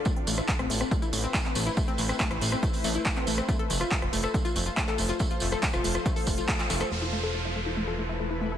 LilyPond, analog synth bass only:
\new Staff \with { instrumentName = "Analog synth bass" } { \clef bass \time 4/4 \key a \minor \tempo 4 = 140 r8 a,,16 r8 a,,16 a,,16 r8. a,,16 r8. a,,16 r16 | r8 a,,16 r8 a,,16 a,,16 r8. a,,16 r8. a,,16 r16 | r8 f,,16 r8 f,,16 f,,16 r8. f,,16 r8. f,,16 r16 | r8 f,,16 r8 f,,16 f,,16 r8. f,,16 r8. f,,16 r16 |
e,,1 | }